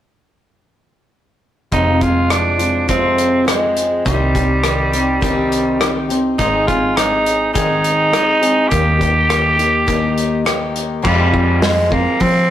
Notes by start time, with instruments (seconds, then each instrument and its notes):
1.72 picked electric bass F1, steel-string acoustic guitar F2 C3 F3 G#3 C4 F4, tenor saxophone D#4, kick, closed hi-hat
2.01 steel-string acoustic guitar F3 G#3 C4 F4, tenor saxophone F4, kick, closed hi-hat
2.29 steel-string acoustic guitar F3 G#3 C4 F4, tenor saxophone D4, cross-stick, closed hi-hat
2.58 steel-string acoustic guitar F3 G#3 C4 F4, closed hi-hat
2.87 steel-string acoustic guitar F2 C3 F3 G#3 C4 F4, tenor saxophone C4, kick, closed hi-hat
3.18 closed hi-hat
3.45 steel-string acoustic guitar F3 G#3 C4 F4, tenor saxophone G#3, cross-stick, closed hi-hat
3.77 closed hi-hat
4.05 picked electric bass C2, steel-string acoustic guitar C3 D#3 C4 D#4 G4, tenor saxophone G3, kick, closed hi-hat
4.35 steel-string acoustic guitar C4 D#4 G4, kick, closed hi-hat
4.63 steel-string acoustic guitar D#3 C4 D#4 G4, cross-stick, closed hi-hat
4.91 steel-string acoustic guitar C4 D#4 G4, closed hi-hat
5.21 steel-string acoustic guitar C3 D#3 C4 D#4 G4, kick, closed hi-hat
5.52 closed hi-hat
5.79 steel-string acoustic guitar D#3 C4 D#4 G4, cross-stick, closed hi-hat
6.09 steel-string acoustic guitar C4 D#4 G4, closed hi-hat
6.38 picked electric bass G#1, steel-string acoustic guitar G#2 D#3 G#3 C4 D#4 G#4, tenor saxophone D#4, kick, closed hi-hat
6.67 steel-string acoustic guitar G#3 C4 D#4 G#4, tenor saxophone F4, kick, closed hi-hat
6.95 steel-string acoustic guitar G#3 C4 D#4 G#4, tenor saxophone D#4, cross-stick, closed hi-hat
7.26 closed hi-hat
7.53 steel-string acoustic guitar G#2 D#3 G#3 C4 D#4 G#4, tenor saxophone D#4, kick, closed hi-hat
7.84 closed hi-hat
8.11 steel-string acoustic guitar G#3 C4 D#4 G#4, cross-stick, closed hi-hat
8.41 steel-string acoustic guitar G#3 C4 D#4 G#4, closed hi-hat
8.68 picked electric bass D#2, steel-string acoustic guitar D#3 A#3 D#4 G4, tenor saxophone G4, kick, closed hi-hat
8.99 steel-string acoustic guitar A#3 D#4 G4, kick, closed hi-hat
9.29 steel-string acoustic guitar D#3 A#3 D#4 G4, cross-stick, closed hi-hat
9.56 steel-string acoustic guitar A#3 D#4 G4, closed hi-hat
9.86 steel-string acoustic guitar D#3 A#3 D#4 G4, kick, closed hi-hat
10.18 closed hi-hat
10.45 steel-string acoustic guitar D#3 A#3 D#4 G4, cross-stick, closed hi-hat
10.76 closed hi-hat
11.02 steel-string acoustic guitar F2 C3 F3 G#3 C4 F4, picked electric bass F2, tenor saxophone G3, kick, crash
11.32 steel-string acoustic guitar F3 G#3 C4 F4, kick
11.61 steel-string acoustic guitar F3 G#3 C4 F4, tenor saxophone G#3, snare, open hi-hat
11.90 steel-string acoustic guitar F3 G#3 C4 F4, tenor saxophone A#3, kick
12.20 picked electric bass F3, tenor saxophone C4, kick, open hi-hat